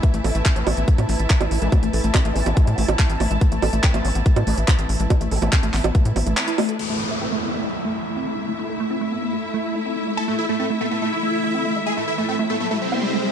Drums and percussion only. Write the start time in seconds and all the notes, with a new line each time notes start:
0.03 kick, closed hi-hat
0.14 closed hi-hat
0.24 open hi-hat, high bongo
0.35 closed hi-hat
0.46 kick, clap, closed hi-hat
0.56 closed hi-hat
0.67 open hi-hat, high bongo
0.77 closed hi-hat
0.88 kick, closed hi-hat
0.98 closed hi-hat, high bongo
1.09 open hi-hat
1.19 closed hi-hat
1.30 kick, clap, closed hi-hat
1.41 closed hi-hat, high bongo
1.51 open hi-hat
1.62 closed hi-hat
1.72 kick, closed hi-hat, high bongo
1.83 closed hi-hat
1.93 open hi-hat
2.04 closed hi-hat
2.15 kick, clap, closed hi-hat, high bongo
2.25 closed hi-hat
2.36 open hi-hat
2.46 closed hi-hat, high bongo
2.57 kick, closed hi-hat
2.67 closed hi-hat
2.78 open hi-hat
2.88 closed hi-hat, high bongo
2.99 kick, clap, closed hi-hat
3.10 closed hi-hat
3.20 open hi-hat, high bongo
3.31 closed hi-hat
3.41 kick, closed hi-hat
3.52 closed hi-hat
3.62 open hi-hat, high bongo
3.73 closed hi-hat
3.84 kick, clap, closed hi-hat
3.94 closed hi-hat, high bongo
4.05 open hi-hat
4.15 closed hi-hat
4.26 kick, closed hi-hat
4.36 closed hi-hat, high bongo
4.47 open hi-hat
4.58 closed hi-hat
4.68 kick, clap, closed hi-hat, high bongo
4.79 closed hi-hat
4.89 open hi-hat
5.00 closed hi-hat
5.10 kick, closed hi-hat, high bongo
5.21 closed hi-hat
5.31 open hi-hat
5.42 closed hi-hat, high bongo
5.53 kick, clap, closed hi-hat
5.63 closed hi-hat
5.74 clap, open hi-hat
5.84 closed hi-hat, high bongo
5.95 kick, closed hi-hat
6.05 closed hi-hat
6.16 open hi-hat, high bongo
6.27 closed hi-hat
6.37 clap, closed hi-hat
6.48 closed hi-hat
6.58 open hi-hat, high bongo
6.69 closed hi-hat
6.79 crash